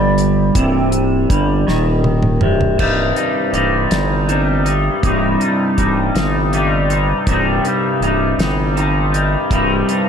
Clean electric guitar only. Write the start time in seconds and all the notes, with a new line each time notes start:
Already playing: G2 G3
0.56 C2 C3
1.29 G2 G3
1.67 D#2 D#3
2.42 C2 C3
2.78 C2 G2 C3 G3 D#4
3.16 C3 G3 D#4
3.53 G2 C3 G3 D#4
3.90 C3 G3 D#4
4.27 G2 C3 G3 D#4
4.65 C3 G3 D#4
5.03 C2 G2 C3 G3 D#4
5.40 C3 G3 D#4
5.77 G2 C3 G3 D#4
6.15 C3 G3 D#4
6.52 G2 C3 G3 D#4
6.90 C3 G3 D#4
7.27 C2 G2 C3 G3 D#4
7.64 C3 G3 D#4
8.02 G2 C3 G3 D#4
8.39 C3 G3 D#4
8.76 G2 C3 G3 D#4
9.12 C3 G3 D#4
9.50 C2 G2 C3 G3 D#4
9.88 C3 G3 D#4